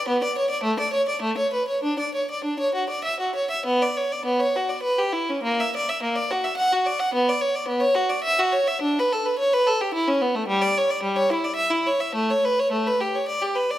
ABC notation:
X:1
M:3/4
L:1/16
Q:1/4=105
K:D
V:1 name="Violin"
B, d c d A, d c d A, c B c | D d c d D c F d e F c e | [K:Bm] B, d c d B, c F d B G E C | ^A, e d e A, d F e f F d f |
B, d c d B, c F d e F c e | D B A B c B A G E C B, A, | [K:Edor] G, d c d G, c E d e E c e | A, c B c A, B G c d G B d |]